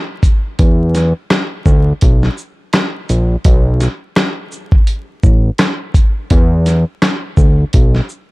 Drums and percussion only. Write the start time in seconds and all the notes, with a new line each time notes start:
0.23 kick, closed hi-hat, shaker
0.59 kick, closed hi-hat
0.95 snare, closed hi-hat, shaker
1.30 cross-stick, snare, closed hi-hat
1.66 kick, shaker
2.01 kick, closed hi-hat
2.23 snare
2.38 shaker
2.73 cross-stick, snare, closed hi-hat
3.09 closed hi-hat, shaker
3.45 kick, closed hi-hat
3.80 snare, closed hi-hat, shaker
4.16 cross-stick, snare, closed hi-hat
4.52 shaker
4.72 kick
4.87 closed hi-hat
5.23 kick, shaker
5.58 cross-stick, snare, closed hi-hat
5.94 kick, closed hi-hat, shaker
6.30 kick, closed hi-hat
6.66 snare, closed hi-hat, shaker
7.02 cross-stick, snare, closed hi-hat
7.37 kick, shaker
7.73 kick, closed hi-hat
7.95 snare
8.09 shaker